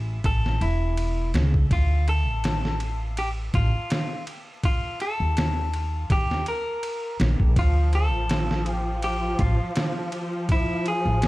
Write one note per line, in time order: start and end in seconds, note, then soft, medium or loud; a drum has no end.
0.00 0.21 A1 medium
0.24 0.57 A1 medium
0.24 0.63 A4 loud
0.24 kick loud
0.24 ride medium
0.46 snare soft
0.61 1.31 E1 medium
0.61 1.31 E4 medium
0.61 ride medium
0.97 ride medium
1.34 1.67 C#2 loud
1.34 snare loud
1.34 ride medium
1.54 kick medium
1.71 2.28 D2 medium
1.71 2.09 F4 medium
1.71 kick loud
1.71 ride medium
2.08 3.18 A4 loud
2.08 ride medium
2.28 3.51 A1 medium
2.44 snare loud
2.44 ride medium
2.65 snare soft
2.80 ride medium
3.17 3.28 G4 medium
3.17 ride medium
3.54 3.71 A1 loud
3.54 4.24 F4 medium
3.54 kick medium
3.54 ride medium
3.90 snare loud
3.90 ride medium
4.27 ride medium
4.64 5.01 F4 medium
4.64 kick loud
4.64 ride medium
5.00 6.12 A4 medium
5.00 ride medium
5.20 6.07 D#2 medium
5.37 snare loud
5.37 ride medium
5.74 ride medium
6.10 6.43 D#2 medium
6.10 6.48 G4 medium
6.10 kick loud
6.10 ride medium
6.31 snare soft
6.46 7.17 A#4 loud
6.46 ride medium
6.83 ride medium
7.20 7.37 A#1 medium
7.20 snare loud
7.20 ride medium
7.40 7.54 A#1 medium
7.40 kick medium
7.56 8.13 D2 medium
7.56 11.28 F3 medium
7.56 7.92 F4 medium
7.56 kick loud
7.56 ride medium
7.93 8.73 A4 loud
7.93 ride medium
8.13 9.36 A1 medium
8.29 snare loud
8.29 ride medium
8.51 snare soft
8.66 ride medium
8.73 9.04 G4 loud
9.02 9.41 G4 medium
9.02 ride medium
9.39 9.57 A1 loud
9.39 10.09 F4 medium
9.39 kick medium
9.39 ride medium
9.76 snare loud
9.76 ride medium
10.12 ride medium
10.49 10.88 E4 medium
10.49 kick loud
10.49 ride medium
10.86 11.28 G#4 medium
10.86 ride medium
11.05 11.28 A1 medium
11.22 snare loud
11.22 ride medium